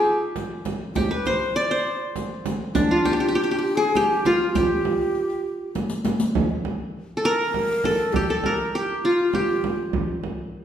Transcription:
Already playing: D#4 F4 G4 G#4
0.36 riq, frame drum
0.65 riq, frame drum
0.95 G4, riq, frame drum
1.11 B4
1.26 C5, riq, frame drum
1.56 D5
1.61 C5
1.70 C5 D5
2.16 riq, frame drum
2.46 riq, frame drum
2.75 D4, riq, frame drum
2.91 F4
3.05 G4, riq, frame drum
3.13 G4
3.20 G4
3.28 G4
3.35 G4
3.44 G4
3.51 G4
3.59 G4
3.75 G#4
3.95 G4, riq, frame drum
4.25 F4, riq, frame drum
4.55 G4, riq, frame drum
4.85 frame drum
5.15 riq
5.30 riq
5.75 riq, frame drum
5.90 riq
6.05 riq, frame drum
6.20 riq
6.35 frame drum
6.65 frame drum
7.17 A4
7.24 A#4
7.54 frame drum
7.84 A4, frame drum
8.13 G4, frame drum
8.29 A4
8.44 A#4, frame drum
8.75 G4
9.04 F4
9.34 G4, frame drum
9.64 frame drum
9.93 frame drum
10.24 frame drum

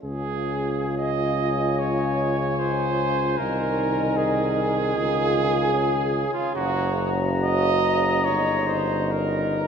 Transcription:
0.03 C#2 C#3 F4 G#4 G#5
0.97 D#5
1.79 C#5
2.59 C5
3.38 C2 D#3 D#4 A#4
4.16 G#4
4.96 C#2 F4 G#5
5.74 C#3
6.33 F4
6.55 F#1 F#4 A#5
7.44 D#5
8.25 G1 C#5
8.29 D#4
8.66 C5
9.11 A#4

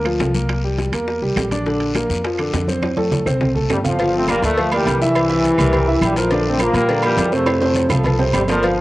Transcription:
Already playing: D2
0.05 F3 F4, high bongo, high timbale, claves
0.19 C2, high bongo, low bongo, high conga, high timbale, low timbale, short guiro
0.35 A#3 A#4, high conga, short guiro
0.49 high bongo, high conga, high timbale, long guiro, claves
0.64 G3 G4, high conga
0.78 high bongo, high conga, high timbale, low timbale, short guiro
0.92 E2 A#3 A#4, high bongo, high conga, high timbale, short guiro, claves
1.07 high bongo, high conga, long guiro
1.22 C2 G3 G4, high bongo, high conga
1.36 A#1, high bongo, low bongo, high conga, high timbale, low timbale, short guiro, claves
1.51 D4 D5, high bongo, high conga, high timbale, short guiro
1.66 D3 D4, high bongo, high conga, long guiro
1.80 high bongo, high conga, high timbale
1.95 A#3 A#4, high bongo, high conga, high timbale, low timbale, short guiro, claves
2.09 F2, high bongo, high conga, short guiro
2.24 F3 F4, high bongo, high conga, high timbale, long guiro
2.38 D3 D4, high bongo, high conga, high timbale, claves
2.53 F2, high bongo, low bongo, high conga, high timbale, low timbale, short guiro
2.67 C4 C5, high conga, short guiro
2.82 high bongo, high conga, high timbale, long guiro, claves
2.97 A3 A4, high conga, high timbale
3.12 high bongo, low conga, high timbale, short guiro
3.26 C2 C4 C5, high bongo, low conga, low timbale, short guiro, claves
3.41 high bongo, low conga, low timbale, long guiro
3.55 A3 A4, high bongo, low conga
3.70 G1 C3 G3, high bongo, low bongo, low timbale, short guiro, claves
3.84 D3 F3 F4 F5, high bongo, low conga, low timbale, short guiro
3.99 F3 F4 F5, cowbell, high conga, low agogo, long guiro
4.13 A3 C4, high conga
4.27 G3 A#3 A#4 D5, cowbell, high conga, low agogo, short guiro, claves
4.42 D2 F3 A3, cowbell, high conga, low agogo, short guiro
4.57 F3 F4 F5, cowbell, high conga, long guiro
4.72 E3 G3 A#3 A#4 D5, cowbell, high conga, low agogo, claves
4.86 C2, cowbell, high conga, low timbale, low agogo, short guiro
5.01 C3 E3 E4 E5, high conga, short guiro
5.15 cowbell, high conga, low agogo, long guiro, claves
5.30 E3 E4 E5, high conga, low agogo
5.44 cowbell, high conga, short guiro
5.58 C2 G3 G4 A#4, high conga, low conga, low agogo, short guiro, claves
5.73 G3 G4 A#4, cowbell, high conga, low conga, low agogo, long guiro
5.87 E3 E4 E5, high conga
6.01 A#1 E3 G3, cowbell, high conga, low agogo, short guiro, claves
6.16 D3 F3 F4 A#4, cowbell, high conga, low agogo, short guiro
6.31 D3 D4 D5, cowbell, low agogo, long guiro
6.45 A3 C4, high conga
6.59 F3 A#3 F4 A#4, cowbell, high conga, low agogo, short guiro, claves
6.74 A#2 G3 A#3, cowbell, high conga, low agogo, short guiro
6.88 D3 D4 D5, cowbell, high conga, long guiro
7.03 E3 F3 G3 F4 A#4, cowbell, high conga, low agogo, claves
7.17 F2, cowbell, high conga, low timbale, low agogo, short guiro
7.32 C3 F3 A3 C4 C5, high conga, short guiro
7.46 cowbell, high conga, high timbale, low agogo, long guiro, claves
7.61 C3 C4 C5, high timbale, low agogo
7.74 cowbell, high conga, high timbale, short guiro
7.89 C2 F3 F4 A4, high conga, low conga, low timbale, low agogo, short guiro, claves
8.04 F3 F4 A4, cowbell, high conga, low conga, low timbale, low agogo, long guiro
8.19 C3 C4 C5, high conga, low timbale
8.33 G1 C3 G3, cowbell, high conga, low timbale, low agogo, short guiro, claves
8.48 D3 F3 A#3 A#4 D5, cowbell, high conga, low timbale, low agogo, short guiro
8.63 F3 F4 F5, cowbell, high conga, low agogo, long guiro
8.78 high conga

